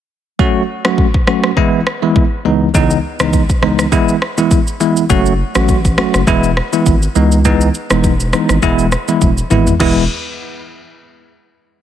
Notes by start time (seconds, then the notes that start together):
0.39 F#3 A3 C#4 F#4, kick
0.85 F#3 A3 C#4 F#4, cross-stick
0.98 kick
1.14 kick
1.27 F#3 A3 C#4 F#4, cross-stick
1.44 cross-stick
1.57 E3 G#3 B3 E4, kick
1.87 cross-stick
2.02 E3 G#3 B3 E4
2.16 kick
2.45 C#2 E3 G#3 B3 D#4
2.74 C#2 E3 G#3 B3 D#4, kick, shaker
2.90 shaker
3.20 C#2 E3 G#3 B3 D#4, cross-stick, shaker
3.33 kick, shaker
3.49 kick, shaker
3.63 C#2 E3 G#3 B3 D#4, cross-stick
3.79 cross-stick, shaker
3.92 E3 G#3 B3 E4, kick, shaker
4.08 shaker
4.22 cross-stick
4.37 E3 G#3 B3 E4, shaker
4.51 kick, shaker
4.67 shaker
4.80 E3 G#3 B3 E4, shaker
4.97 shaker
5.10 F#1 F#3 A3 C#4 F#4, kick, shaker
5.26 shaker
5.55 A1 F#3 A3 C#4 F#4, cross-stick, shaker
5.69 kick, shaker
5.85 kick, shaker
5.98 F#3 A3 C#4 F#4, cross-stick
6.14 F#1, cross-stick, shaker
6.27 E1 E3 G#3 B3 E4, kick, shaker
6.43 shaker
6.57 cross-stick
6.73 E3 G#3 B3 E4, shaker
6.86 G#1, kick, shaker
7.02 shaker
7.15 C#2 E3 G#3 B3 D#4, shaker
7.32 shaker
7.45 E3 G#3 B3 D#4, kick, shaker
7.61 shaker
7.75 shaker
7.90 E1 E3 G#3 B3 D#4, cross-stick, shaker
8.04 kick, shaker
8.20 shaker
8.33 E3 G#3 B3 D#4, cross-stick, shaker
8.49 G#1, cross-stick, shaker
8.62 E1 E3 G#3 B3 E4, kick, shaker
8.79 shaker
8.92 cross-stick, shaker
9.08 E3 G#3 B3 E4, shaker
9.21 E1, kick, high tom, shaker
9.38 shaker
9.51 G#1 E3 G#3 B3 E4, mid tom, shaker
9.67 floor tom, shaker
9.80 E1 E3 G#3 B3 E4, kick, crash